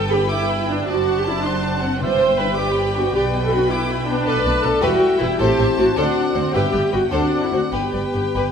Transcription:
0.00 0.85 G1 medium
0.00 0.85 G2 soft
0.00 0.84 B4 soft
0.00 0.12 G5 soft
0.00 0.85 G5 medium
0.11 0.19 B3 medium
0.11 0.19 D4 medium
0.11 0.31 G4 medium
0.11 0.31 B5 soft
0.30 0.68 E4 medium
0.30 0.91 E5 medium
0.30 0.51 D6 soft
0.50 0.70 B5 soft
0.70 0.77 B3 medium
0.70 0.77 D4 medium
0.70 0.89 D4 medium
0.70 0.89 G5 soft
0.88 2.02 F#1 medium
0.88 2.02 F#2 soft
0.88 1.17 F#4 medium
0.88 2.01 C5 soft
0.88 1.06 D5 soft
0.88 1.48 D5 soft
0.88 2.02 A5 medium
1.07 1.26 F#5 soft
1.19 1.27 G4 medium
1.26 1.32 C4 soft
1.26 1.32 D4 medium
1.26 1.46 E4 medium
1.26 1.45 A5 soft
1.44 1.83 D4 medium
1.44 2.02 F#5 medium
1.44 1.64 C6 soft
1.64 1.83 A5 soft
1.82 2.01 C4 medium
1.82 1.89 C4 medium
1.82 1.90 D4 soft
1.82 2.02 F#5 soft
2.01 3.15 G1 medium
2.01 2.55 G2 medium
2.01 3.15 G2 medium
2.01 4.23 B4 soft
2.01 2.39 C5 medium
2.01 2.20 D5 soft
2.01 2.61 E5 medium
2.01 4.23 G5 medium
2.22 2.40 G5 soft
2.39 2.46 B3 medium
2.39 2.46 D4 soft
2.39 2.59 B4 medium
2.39 2.58 B5 soft
2.58 2.95 G4 medium
2.58 3.15 D5 medium
2.58 2.78 D6 soft
2.77 2.96 B5 soft
2.95 3.02 B3 soft
2.95 3.02 D4 soft
2.95 3.15 F#4 medium
2.95 3.15 G5 soft
3.15 4.25 B1 medium
3.15 4.25 B2 medium
3.15 3.23 G4 medium
3.15 4.24 B4 medium
3.15 3.33 D5 soft
3.35 3.53 G5 soft
3.44 3.53 A4 medium
3.51 3.58 B3 medium
3.51 3.58 D4 medium
3.51 3.71 F#4 medium
3.51 3.71 B5 soft
3.71 4.08 E4 medium
3.71 3.90 D6 medium
3.91 4.09 B5 soft
4.07 4.14 B3 medium
4.07 4.26 D4 medium
4.07 4.14 D4 medium
4.07 4.27 G5 medium
4.26 4.34 B1 medium
4.26 4.34 B2 medium
4.26 4.79 A3 medium
4.26 4.79 D4 medium
4.26 4.44 A4 medium
4.26 4.63 B4 medium
4.26 4.45 B4 medium
4.26 4.81 D5 medium
4.26 4.79 A5 medium
4.45 4.52 B1 soft
4.45 4.53 B2 soft
4.45 4.53 B4 soft
4.45 4.53 D5 soft
4.64 4.71 B1 soft
4.64 4.71 B2 soft
4.64 4.82 A4 medium
4.64 4.72 B4 medium
4.82 4.90 E1 medium
4.82 4.90 E2 medium
4.82 5.39 G3 medium
4.82 5.97 E4 medium
4.82 5.20 F#4 medium
4.82 5.00 G4 medium
4.82 5.00 B4 medium
4.82 5.38 E5 medium
4.82 5.40 G5 medium
5.20 5.28 E1 medium
5.20 5.28 E2 soft
5.20 5.39 E4 medium
5.20 5.27 B4 medium
5.39 5.47 A1 medium
5.39 5.47 A2 medium
5.39 6.54 C4 medium
5.39 5.77 G4 medium
5.39 5.57 A4 medium
5.39 5.57 C5 medium
5.39 5.95 C5 medium
5.39 5.97 A5 medium
5.59 5.66 A1 medium
5.59 5.67 A2 medium
5.59 5.66 C5 soft
5.59 5.66 E5 soft
5.78 5.86 A1 soft
5.78 5.85 A2 soft
5.78 5.86 F#4 medium
5.78 5.86 C5 soft
5.96 6.04 D2 medium
5.96 6.34 D4 medium
5.96 6.53 F#4 medium
5.96 6.14 A4 medium
5.96 6.14 C5 medium
5.96 6.53 D5 medium
5.96 6.55 F#5 medium
6.35 6.43 D2 soft
6.35 6.43 D2 medium
6.35 6.54 C4 medium
6.35 6.43 C5 medium
6.53 6.62 G1 medium
6.53 6.61 G2 medium
6.53 7.07 B3 medium
6.53 7.07 G4 medium
6.53 6.71 G4 medium
6.53 6.93 G4 medium
6.53 6.72 B4 medium
6.53 6.91 E5 medium
6.53 7.12 G5 medium
6.73 6.81 G1 soft
6.73 6.81 G2 soft
6.73 6.81 B4 soft
6.73 6.81 D5 soft
6.92 7.01 G1 soft
6.92 7.00 G2 soft
6.92 7.01 F#4 medium
6.92 7.00 B4 soft
7.11 7.19 D2 medium
7.11 7.20 D2 medium
7.11 7.73 C4 medium
7.11 7.41 D4 medium
7.11 7.72 F#4 soft
7.11 7.30 A4 medium
7.11 7.30 C5 medium
7.11 7.69 D5 medium
7.11 7.73 F#5 soft
7.44 7.53 E4 medium
7.52 7.60 D2 soft
7.52 7.60 F#4 medium
7.52 7.60 C5 soft
7.72 7.81 G1 medium
7.72 7.81 G2 medium
7.72 8.52 B3 soft
7.72 8.52 G4 soft
7.72 7.92 G4 soft
7.72 8.52 G4 medium
7.72 7.92 B4 soft
7.72 8.52 B4 soft
7.72 8.52 G5 soft
7.93 8.01 G1 soft
7.93 8.01 G2 soft
7.93 8.01 B4 soft
7.93 8.02 D5 soft
8.13 8.23 G1 soft
8.13 8.22 G2 soft
8.13 8.21 B4 soft
8.34 8.43 G1 soft
8.34 8.43 G2 soft
8.34 8.52 G4 soft
8.34 8.52 B4 soft
8.34 8.40 B5 soft

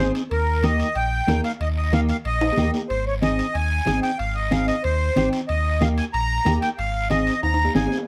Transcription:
0.00 0.12 G#1 medium
0.00 0.21 C4 medium
0.00 0.21 D#4 soft
0.00 0.22 G#4 medium
0.00 0.12 C5 medium
0.15 high timbale medium
0.15 short guiro medium
0.31 0.83 D#2 loud
0.31 0.65 A#4 medium
0.31 high timbale medium
0.31 long guiro medium
0.63 0.86 A#3 medium
0.63 0.86 D#4 medium
0.63 0.86 G4 medium
0.63 0.97 D#5 medium
0.63 high conga medium
0.63 high timbale medium
0.63 short guiro medium
0.80 high timbale medium
0.80 short guiro medium
0.95 1.22 A#1 medium
0.95 1.41 G5 medium
0.95 high timbale medium
0.95 long guiro medium
1.27 1.41 D#2 medium
1.27 1.51 A#3 medium
1.27 1.51 D#4 medium
1.27 1.51 A#4 medium
1.27 high conga medium
1.27 high timbale medium
1.27 low timbale medium
1.27 short guiro medium
1.44 1.52 F5 medium
1.44 high timbale medium
1.44 short guiro medium
1.60 2.12 D#2 loud
1.60 1.68 D#5 medium
1.60 high timbale medium
1.60 long guiro medium
1.78 1.92 D#5 medium
1.93 2.15 A#3 medium
1.93 2.16 D#4 medium
1.93 2.16 G4 medium
1.93 2.00 F5 medium
1.93 high conga medium
1.93 high timbale medium
1.93 short guiro medium
2.09 2.17 F5 medium
2.09 high timbale medium
2.09 short guiro medium
2.25 2.51 A#1 loud
2.25 2.71 D#5 loud
2.25 high timbale medium
2.25 long guiro medium
2.41 high timbale medium
2.53 low timbale medium
2.57 2.71 D#2 medium
2.57 2.80 A#3 medium
2.57 2.80 D#4 medium
2.57 2.81 G4 medium
2.57 high conga medium
2.57 short guiro medium
2.63 low timbale medium
2.74 low timbale medium
2.74 short guiro medium
2.90 3.42 G#1 medium
2.90 3.05 C5 medium
2.90 high timbale medium
2.90 long guiro medium
3.07 3.14 C#5 medium
3.22 3.45 C4 medium
3.22 3.45 D#4 medium
3.22 3.45 G#4 medium
3.22 3.56 D#5 medium
3.22 high conga medium
3.22 high timbale medium
3.22 short guiro medium
3.39 high timbale medium
3.39 short guiro medium
3.55 3.81 D#2 medium
3.55 4.00 G#5 loud
3.55 high timbale medium
3.55 long guiro medium
3.86 4.00 G#1 medium
3.86 4.09 C4 medium
3.86 4.10 D#4 medium
3.86 4.10 G#4 medium
3.86 high conga medium
3.86 high timbale medium
3.86 low timbale medium
3.86 short guiro medium
4.03 4.18 G5 medium
4.03 high timbale medium
4.03 short guiro medium
4.19 4.71 G#1 loud
4.19 4.36 F5 medium
4.19 high timbale medium
4.19 long guiro medium
4.35 4.52 D#5 medium
4.51 4.74 C4 medium
4.51 4.74 D#4 medium
4.51 4.75 G#4 medium
4.51 4.67 F5 medium
4.51 high conga medium
4.51 high timbale medium
4.51 short guiro medium
4.68 4.83 D#5 medium
4.68 high timbale medium
4.68 short guiro medium
4.84 5.10 D#2 loud
4.84 5.29 C5 medium
4.84 high timbale medium
4.84 long guiro medium
5.16 5.30 G#1 medium
5.16 5.39 C4 medium
5.16 5.39 D#4 medium
5.16 5.39 G4 medium
5.16 high conga medium
5.16 high timbale medium
5.16 short guiro medium
5.33 high timbale medium
5.33 short guiro medium
5.48 6.01 D#2 loud
5.48 5.82 D#5 medium
5.48 high timbale medium
5.48 long guiro medium
5.81 6.04 A#3 medium
5.81 6.04 D#4 medium
5.81 6.04 G4 medium
5.81 5.88 F5 medium
5.81 high conga medium
5.81 high timbale medium
5.81 short guiro medium
5.98 6.05 G#5 medium
5.98 high timbale medium
5.98 short guiro medium
6.13 6.40 A#1 loud
6.13 6.59 A#5 loud
6.13 high timbale medium
6.13 long guiro medium
6.45 6.59 D#2 loud
6.45 6.68 A#3 medium
6.45 6.69 D#4 medium
6.45 6.69 G4 medium
6.45 high conga medium
6.45 high timbale medium
6.45 low timbale medium
6.45 short guiro medium
6.62 6.69 G5 medium
6.62 high timbale medium
6.62 short guiro medium
6.78 7.30 G#1 medium
6.78 7.08 F5 medium
6.78 high timbale medium
6.78 long guiro medium
7.10 7.33 C4 medium
7.10 7.33 D#4 medium
7.10 7.33 G#4 medium
7.10 7.40 D#5 medium
7.10 high conga medium
7.10 high timbale medium
7.10 short guiro medium
7.27 high timbale medium
7.27 short guiro medium
7.43 7.69 D#2 loud
7.43 7.73 A#5 loud
7.43 high timbale medium
7.43 long guiro medium
7.54 high timbale medium
7.65 low timbale medium
7.75 7.88 G#1 loud
7.75 7.98 C4 medium
7.75 7.98 D#4 medium
7.75 7.98 G#4 medium
7.75 7.98 G#5 medium
7.75 high conga medium
7.75 low timbale medium
7.75 short guiro medium
7.87 low timbale medium
7.92 short guiro medium
7.97 low timbale medium

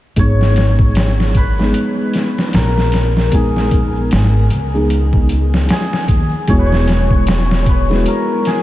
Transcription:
0.16 1.71 G#1 medium
0.16 1.53 G#3 medium
0.16 1.53 B3 medium
0.16 1.53 D#4 medium
0.16 1.54 G#4 medium
0.16 2.74 C#5 loud
0.16 kick loud
0.16 closed hi-hat medium
0.16 shaker soft
0.41 snare soft
0.56 snare soft
0.56 closed hi-hat medium
0.56 shaker medium
0.79 kick medium
0.79 shaker soft
0.95 snare loud
0.95 closed hi-hat medium
0.95 shaker soft
1.18 snare soft
1.18 triangle medium
1.35 2.61 B4 medium
1.35 kick medium
1.35 closed hi-hat medium
1.35 shaker medium
1.58 1.77 G#3 medium
1.58 1.77 B3 medium
1.58 1.78 D#4 medium
1.58 1.78 G#4 medium
1.58 snare soft
1.58 shaker soft
1.74 closed hi-hat medium
1.74 shaker soft
2.13 snare soft
2.13 closed hi-hat medium
2.13 shaker medium
2.38 snare soft
2.38 shaker soft
2.53 4.08 A#1 medium
2.53 5.38 A#4 medium
2.53 snare medium
2.53 closed hi-hat medium
2.53 shaker soft
2.77 snare soft
2.92 snare medium
2.92 closed hi-hat medium
2.92 shaker medium
3.16 snare soft
3.16 shaker soft
3.32 4.68 G#3 medium
3.32 4.69 B3 medium
3.32 4.69 D#4 medium
3.32 5.71 G#4 medium
3.32 4.70 G#4 medium
3.32 kick loud
3.32 closed hi-hat medium
3.32 shaker soft
3.56 snare soft
3.71 kick medium
3.71 closed hi-hat medium
3.71 shaker medium
3.95 shaker soft
4.11 4.47 G#1 medium
4.11 snare loud
4.11 closed hi-hat medium
4.11 shaker soft
4.34 triangle medium
4.50 5.66 C#2 medium
4.50 closed hi-hat medium
4.50 shaker medium
4.74 4.93 G#3 medium
4.74 4.93 B3 medium
4.74 4.93 D#4 medium
4.74 4.94 G#4 medium
4.74 shaker soft
4.90 closed hi-hat medium
4.90 shaker soft
5.13 kick medium
5.29 closed hi-hat medium
5.29 shaker medium
5.54 snare soft
5.54 shaker soft
5.69 8.47 G#4 medium
5.69 snare loud
5.69 closed hi-hat medium
5.69 shaker soft
5.93 snare soft
6.08 6.29 D#2 medium
6.08 kick medium
6.08 closed hi-hat medium
6.08 shaker medium
6.31 shaker soft
6.48 8.03 E1 medium
6.48 7.84 G#3 medium
6.48 7.85 B3 medium
6.48 7.85 E4 medium
6.48 7.86 F#4 medium
6.48 6.66 C#5 loud
6.48 kick loud
6.48 closed hi-hat medium
6.48 shaker soft
6.59 7.68 B4 medium
6.66 7.62 C#5 loud
6.72 snare soft
6.88 snare soft
6.88 closed hi-hat medium
6.88 shaker medium
7.10 kick medium
7.10 shaker soft
7.27 snare loud
7.27 closed hi-hat medium
7.27 shaker soft
7.51 snare medium
7.51 triangle medium
7.63 8.63 C#5 medium
7.63 kick medium
7.63 closed hi-hat medium
7.63 shaker medium
7.69 7.79 B4 medium
7.89 8.09 G#3 medium
7.89 8.09 B3 medium
7.89 8.09 E4 medium
7.89 8.09 F#4 medium
7.89 snare soft
7.89 shaker soft
8.06 8.63 A#4 medium
8.06 closed hi-hat medium
8.06 shaker soft
8.45 8.63 G#4 medium
8.45 snare soft
8.45 closed hi-hat medium
8.45 shaker medium

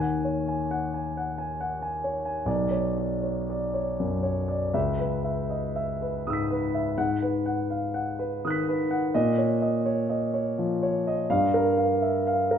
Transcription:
0.00 2.42 D#2 soft
0.00 0.38 F#5 soft
0.00 0.15 G#5 medium
0.25 0.61 C#5 soft
0.48 0.84 G#5 soft
0.71 1.07 F#5 soft
0.94 1.16 G#5 soft
1.17 1.52 F#5 soft
1.38 1.73 G#5 soft
1.60 1.95 F#5 soft
1.82 2.17 G#5 soft
2.04 2.38 C#5 soft
2.25 2.46 G#5 soft
2.46 4.70 B1 soft
2.46 2.88 D5 soft
2.71 3.13 C#5 soft
2.97 3.39 D5 soft
3.23 3.49 C#5 soft
3.50 3.90 D5 soft
3.74 4.14 C#5 soft
3.99 4.39 F#2 soft
4.23 4.63 C#5 soft
4.48 4.74 D5 soft
4.73 6.92 C#2 soft
4.73 5.14 E5 soft
4.99 5.39 B4 soft
5.24 5.64 E5 soft
5.50 5.75 D#5 soft
5.76 6.15 E5 soft
6.02 6.40 B4 soft
6.27 6.65 G#2 soft
6.27 6.94 D#6 soft
6.27 6.95 E6 soft
6.33 6.97 B6 soft
6.51 6.88 B4 soft
6.75 6.97 E5 soft
6.98 9.10 G#2 soft
6.98 7.35 F#5 medium
7.22 7.60 B4 soft
7.46 7.84 F#5 soft
7.70 7.94 F5 soft
7.94 8.33 F#5 soft
8.19 8.57 B4 soft
8.45 8.82 D#3 soft
8.45 9.11 D#6 soft
8.45 9.12 F#6 soft
8.51 9.14 B6 soft
8.69 9.05 B4 soft
8.91 9.14 F#5 soft
9.14 11.25 A#2 medium
9.14 9.52 D#5 medium
9.38 9.76 C#5 soft
9.62 9.99 D#5 soft
9.86 10.09 C#5 soft
10.10 10.47 D#5 soft
10.34 10.72 C#5 soft
10.58 10.96 F3 soft
10.83 11.20 C#5 soft
11.07 11.30 D#5 soft
11.30 12.58 G2 medium
11.30 11.68 F5 medium
11.54 11.93 A#4 soft
11.77 12.17 F5 soft
12.02 12.26 E5 soft
12.27 12.58 F5 soft
12.51 12.58 A#4 soft

